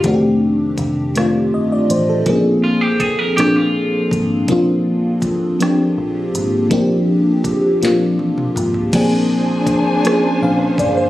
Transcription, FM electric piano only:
0.04 0.73 D#3 medium
0.04 0.73 A3 medium
0.04 0.74 C4 medium
0.04 0.74 D4 medium
0.04 0.12 F#4 medium
0.14 0.78 G4 medium
1.15 1.84 D#3 medium
1.15 1.84 A3 medium
1.15 1.85 C4 medium
1.15 1.85 D4 medium
1.15 1.86 F4 medium
1.54 1.71 D#5 medium
1.72 1.89 D5 medium
1.91 2.08 C5 medium
2.09 2.44 A4 medium
2.26 2.95 F3 medium
2.26 2.95 A#3 medium
2.26 2.96 C4 medium
2.26 2.34 C#4 medium
2.26 2.97 G#4 medium
2.35 3.00 D4 medium
3.37 4.06 F3 medium
3.37 4.06 A#3 medium
3.37 4.07 C4 medium
3.37 4.07 D4 medium
3.37 4.08 G#4 medium
4.49 5.17 F3 medium
4.49 5.18 A#3 medium
4.49 5.18 C4 medium
4.49 5.19 D4 medium
4.49 5.19 F4 medium
5.59 6.28 F3 medium
5.59 6.29 A#3 medium
5.59 6.29 C4 medium
5.59 6.30 D4 medium
5.59 6.30 G4 medium
6.70 7.39 F3 medium
6.70 7.40 A#3 medium
6.70 7.40 C4 medium
6.70 7.40 D4 medium
6.70 7.41 G4 medium
7.81 8.51 F3 medium
7.81 8.51 A#3 medium
7.81 8.51 C4 medium
7.81 8.52 D4 medium
7.81 8.52 F4 medium
8.93 9.62 F3 medium
8.93 9.62 A#3 medium
8.93 9.63 C4 medium
8.93 9.63 D4 medium
8.93 9.63 G#4 medium
10.04 10.73 F3 medium
10.04 10.73 A#3 medium
10.04 10.74 C4 medium
10.04 10.12 C#4 soft
10.04 10.74 G#4 medium
10.13 10.77 D4 medium
10.43 10.77 F5 medium
10.79 10.96 D5 medium
10.97 11.10 C5 medium

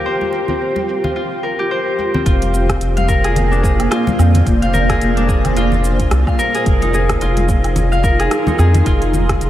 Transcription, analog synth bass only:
2.26 2.78 F1 medium
2.81 3.88 F1 medium
4.19 4.42 F2 loud
4.47 4.98 F1 medium
5.02 6.08 F1 medium
6.11 6.24 C2 loud
6.66 7.18 F1 medium
7.22 8.28 F1 medium
8.59 8.82 F2 loud
8.86 9.38 F1 loud
9.41 9.50 F1 medium

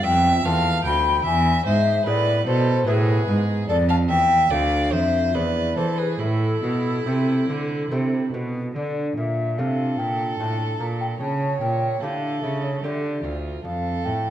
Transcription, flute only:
0.05 0.44 G5 loud
0.45 0.85 A5 loud
0.85 1.25 B5 loud
1.25 1.65 G#5 loud
1.66 2.06 E5 loud
2.07 2.46 D5 loud
2.46 2.88 C5 loud
2.87 3.43 B4 medium
3.68 3.89 D5 loud
3.90 3.96 A5 loud
4.09 4.50 G5 loud
4.51 4.92 F5 medium
4.93 5.36 E5 medium
5.35 5.78 D5 medium
5.77 6.01 C5 medium
5.99 6.19 B4 medium
6.20 8.29 A4 medium
8.76 9.14 D5 medium
9.17 9.59 E5 medium
9.58 10.00 F5 medium
9.98 10.38 G5 medium
10.39 10.79 A5 medium
10.80 10.86 A#5 medium
11.00 11.06 G5 medium
11.20 11.59 A5 medium
11.60 12.01 G5 medium
12.02 12.44 F5 medium
12.43 12.65 E5 medium
12.64 12.83 C#5 medium
12.83 13.37 D5 medium
13.64 14.06 F5 medium
14.05 14.30 G5 medium

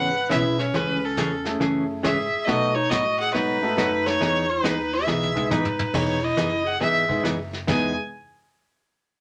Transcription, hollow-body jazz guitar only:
0.00 0.10 C#4 medium
0.00 0.10 G#4 medium
0.29 0.42 C#3 medium
0.29 0.43 E3 medium
0.29 0.43 B3 medium
0.29 0.43 C#4 medium
0.29 0.43 G#4 medium
0.74 0.97 C#3 medium
0.74 0.97 E3 medium
0.74 0.97 A3 medium
0.74 0.97 C#4 medium
0.74 0.97 G#4 medium
1.18 1.30 C#3 medium
1.18 1.30 E3 medium
1.18 1.30 A3 medium
1.18 1.30 C#4 medium
1.18 1.30 G#4 medium
1.60 1.83 C#3 medium
1.60 1.83 E3 medium
1.60 1.83 A3 medium
1.60 1.84 C#4 medium
1.60 1.84 G#4 medium
2.03 2.16 C#3 medium
2.03 2.16 E3 medium
2.03 2.16 A3 medium
2.03 2.16 C#4 medium
2.03 2.17 G#4 medium
2.48 2.70 B2 medium
2.48 2.70 F#3 medium
2.48 2.70 A3 medium
2.48 2.70 D#4 medium
2.48 2.71 F#4 medium
2.90 3.03 B2 medium
2.90 3.03 F#3 medium
2.90 3.03 A3 medium
2.90 3.03 D#4 medium
2.90 3.03 F#4 medium
3.34 3.57 B2 medium
3.34 3.57 F#3 medium
3.34 3.57 A3 medium
3.34 3.57 D#4 medium
3.34 3.57 F#4 medium
3.77 3.89 B2 medium
3.77 3.90 F#3 medium
3.77 3.90 A3 medium
3.77 3.90 D#4 medium
3.77 3.90 F#4 loud
4.21 4.43 E3 medium
4.21 4.43 B3 medium
4.21 4.44 D#4 medium
4.21 4.44 G#4 medium
4.64 4.76 E3 medium
4.64 4.76 B3 medium
4.64 4.76 D#4 medium
4.64 4.77 G#4 medium
5.07 5.30 E3 medium
5.07 5.30 B3 medium
5.07 5.30 D#4 medium
5.07 5.30 G#4 medium
5.51 5.63 E3 medium
5.51 5.63 B3 medium
5.51 5.63 D#4 medium
5.51 5.63 G#4 medium
5.94 6.17 E3 medium
5.94 6.17 B3 medium
5.94 6.17 D#4 medium
5.94 6.17 G#4 medium
6.37 6.49 E3 medium
6.37 6.49 B3 medium
6.37 6.50 D#4 medium
6.37 6.50 G#4 medium
6.81 7.03 E3 medium
6.81 7.04 B3 medium
6.81 7.04 D#4 medium
6.81 7.04 G#4 medium
7.24 7.36 E3 medium
7.24 7.36 B3 medium
7.24 7.37 D#4 medium
7.24 7.37 G#4 medium
7.67 7.91 E3 medium
7.67 7.91 B3 medium
7.67 7.91 D#4 medium
7.67 7.92 G#4 medium

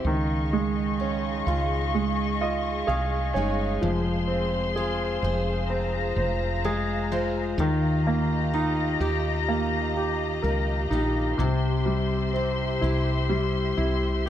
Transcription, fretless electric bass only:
0.05 1.43 C#2 medium
1.47 2.84 C#2 medium
2.88 3.32 C2 medium
3.35 3.79 G1 medium
3.82 5.19 F1 medium
5.23 6.13 F1 medium
6.16 7.54 F1 medium
7.58 8.96 D#2 medium
9.00 10.39 D#2 medium
10.43 10.88 C#2 medium
10.91 11.35 A#1 medium
11.39 12.78 C2 medium
12.82 13.74 C2 medium
13.78 14.29 C2 medium

